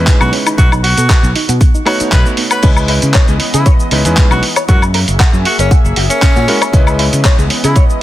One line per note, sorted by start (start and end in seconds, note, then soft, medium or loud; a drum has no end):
0.00 0.55 G#3 medium
0.00 0.55 C#4 medium
0.00 0.55 D#4 medium
0.00 0.55 E4 medium
0.00 0.56 B4 medium
0.07 0.15 G#4 medium
0.07 kick loud
0.07 clap loud
0.07 closed hi-hat medium
0.07 shaker medium
0.20 0.30 B1 loud
0.20 0.28 B3 loud
0.20 0.33 F#4 medium
0.20 high woodblock medium
0.20 shaker soft
0.33 0.37 C#4 loud
0.33 open hi-hat medium
0.46 0.53 D#4 medium
0.46 closed hi-hat medium
0.46 high woodblock medium
0.46 shaker medium
0.57 0.93 B1 loud
0.57 0.67 A3 medium
0.57 0.67 B3 medium
0.57 0.70 B3 medium
0.57 0.68 D#4 medium
0.57 0.72 F#4 medium
0.57 0.68 F#4 medium
0.57 0.68 B4 medium
0.57 kick loud
0.57 closed hi-hat medium
0.57 shaker medium
0.72 0.79 D#4 loud
0.72 high woodblock medium
0.72 shaker soft
0.84 1.35 F#4 loud
0.84 0.89 F#4 medium
0.84 open hi-hat loud
0.98 1.07 B2 medium
0.98 1.05 A4 medium
0.98 closed hi-hat medium
0.98 shaker medium
1.09 1.17 B4 medium
1.09 kick loud
1.09 clap loud
1.09 closed hi-hat medium
1.09 shaker medium
1.23 1.32 B1 loud
1.23 1.30 B3 loud
1.23 shaker soft
1.36 1.40 D#4 loud
1.36 open hi-hat medium
1.49 1.58 B2 loud
1.49 1.56 F#4 loud
1.49 closed hi-hat medium
1.49 shaker medium
1.61 1.72 B3 medium
1.61 kick loud
1.61 closed hi-hat medium
1.61 shaker medium
1.74 1.81 D#4 loud
1.74 shaker soft
1.85 2.60 A3 loud
1.85 2.60 B3 medium
1.85 2.60 D#4 medium
1.85 1.91 D#4 medium
1.85 2.01 F#4 loud
1.85 2.61 F#4 medium
1.85 2.61 C#5 loud
1.85 open hi-hat loud
1.85 high woodblock medium
2.00 2.04 D#4 medium
2.00 muted fingered electric bass stroke soft
2.00 closed hi-hat medium
2.00 shaker medium
2.12 2.23 B1 medium
2.12 2.17 D#4 loud
2.12 2.26 B4 medium
2.12 kick loud
2.12 clap loud
2.12 closed hi-hat medium
2.12 shaker medium
2.26 2.33 B4 medium
2.26 shaker soft
2.37 2.42 B3 medium
2.37 open hi-hat medium
2.51 2.69 B4 medium
2.51 2.62 F#5 medium
2.51 closed hi-hat medium
2.51 high woodblock medium
2.51 shaker medium
2.62 2.98 C#2 medium
2.62 4.41 E3 medium
2.62 3.88 G#3 medium
2.62 4.41 B3 medium
2.62 3.88 C#4 medium
2.62 2.70 C#4 loud
2.62 3.89 E4 medium
2.62 3.89 B4 medium
2.62 4.41 D#5 medium
2.62 3.89 D#5 medium
2.62 kick loud
2.62 closed hi-hat medium
2.62 crash medium
2.62 shaker medium
2.77 high woodblock medium
2.77 shaker soft
2.88 2.93 E4 medium
2.88 open hi-hat loud
3.02 3.12 C#3 loud
3.02 closed hi-hat medium
3.02 shaker medium
3.14 3.25 C#5 medium
3.14 kick loud
3.14 clap loud
3.14 closed hi-hat medium
3.14 shaker medium
3.28 3.38 C#2 loud
3.28 3.34 G#3 medium
3.28 shaker soft
3.40 open hi-hat medium
3.54 3.63 C#3 loud
3.54 3.67 E4 loud
3.54 3.60 G#4 loud
3.54 closed hi-hat medium
3.54 shaker medium
3.66 3.73 C#5 medium
3.66 kick loud
3.66 closed hi-hat medium
3.66 shaker medium
3.80 shaker soft
3.91 4.02 C#2 medium
3.91 4.02 G#3 medium
3.91 4.02 C#4 medium
3.91 3.99 C#4 medium
3.91 4.02 D#4 medium
3.91 4.02 E4 medium
3.91 4.02 B4 medium
3.91 open hi-hat loud
4.05 4.15 E2 medium
4.05 4.41 G#3 medium
4.05 4.41 C#4 medium
4.05 4.41 D#4 medium
4.05 4.42 E4 medium
4.05 4.42 B4 medium
4.05 closed hi-hat medium
4.05 shaker medium
4.17 4.27 G#3 loud
4.17 kick loud
4.17 clap loud
4.17 closed hi-hat medium
4.17 shaker medium
4.31 4.40 B1 loud
4.31 4.37 C#4 loud
4.31 4.43 F#4 medium
4.31 high woodblock medium
4.31 shaker soft
4.43 6.71 A#3 medium
4.43 6.71 G#4 medium
4.43 6.71 E5 medium
4.43 open hi-hat medium
4.56 4.62 C#5 loud
4.56 closed hi-hat medium
4.56 high woodblock medium
4.56 shaker medium
4.68 5.03 F#2 loud
4.68 4.78 G#3 medium
4.68 4.78 C#4 medium
4.68 4.78 E4 medium
4.68 4.75 F#4 loud
4.68 4.78 F#4 medium
4.68 4.83 F#4 medium
4.68 4.78 A#4 medium
4.68 kick loud
4.68 closed hi-hat medium
4.68 shaker medium
4.82 high woodblock medium
4.82 shaker soft
4.94 4.98 A#4 medium
4.94 open hi-hat loud
5.08 5.17 F#1 medium
5.08 closed hi-hat medium
5.08 shaker medium
5.20 5.30 F#5 medium
5.20 kick loud
5.20 clap loud
5.20 closed hi-hat medium
5.20 shaker medium
5.33 5.43 F#2 loud
5.33 5.39 C#4 medium
5.33 shaker soft
5.45 5.57 F#4 medium
5.45 open hi-hat loud
5.59 5.68 F#1 loud
5.59 5.71 C#4 medium
5.59 5.65 C#5 loud
5.59 closed hi-hat medium
5.59 shaker medium
5.71 5.78 F#5 medium
5.71 kick loud
5.71 closed hi-hat medium
5.71 shaker medium
5.84 5.94 F#1 loud
5.84 shaker soft
5.96 6.07 F#1 medium
5.96 6.04 F#4 medium
5.96 open hi-hat loud
6.10 6.79 C#4 loud
6.10 closed hi-hat medium
6.10 shaker medium
6.22 6.33 C#4 loud
6.22 kick loud
6.22 clap loud
6.22 closed hi-hat medium
6.22 shaker medium
6.36 6.45 A#2 medium
6.36 6.42 F#4 loud
6.36 shaker soft
6.48 6.57 G#3 medium
6.48 6.57 C#4 medium
6.48 6.58 E4 medium
6.48 6.58 F#4 medium
6.48 6.58 A#4 loud
6.48 open hi-hat medium
6.61 6.67 C#5 loud
6.61 closed hi-hat medium
6.61 high woodblock medium
6.61 shaker medium
6.73 7.08 C#2 loud
6.73 8.03 E3 medium
6.73 7.98 G#3 medium
6.73 8.03 B3 medium
6.73 7.99 C#4 medium
6.73 6.81 C#4 loud
6.73 7.99 E4 medium
6.73 7.99 B4 loud
6.73 8.03 D#5 medium
6.73 7.99 D#5 medium
6.73 kick loud
6.73 closed hi-hat medium
6.73 shaker medium
6.87 high woodblock medium
6.87 shaker soft
6.99 7.03 E4 medium
6.99 open hi-hat loud
7.13 7.22 C#3 medium
7.13 closed hi-hat medium
7.13 shaker medium
7.25 7.35 C#5 medium
7.25 kick loud
7.25 clap loud
7.25 closed hi-hat medium
7.25 shaker medium
7.39 7.48 C#2 loud
7.39 7.45 G#3 medium
7.39 shaker soft
7.50 open hi-hat loud
7.64 7.73 C#3 loud
7.64 7.76 E4 loud
7.64 7.70 G#4 loud
7.64 closed hi-hat medium
7.64 shaker medium
7.76 7.83 C#5 medium
7.76 kick loud
7.76 closed hi-hat medium
7.76 shaker medium
7.90 shaker soft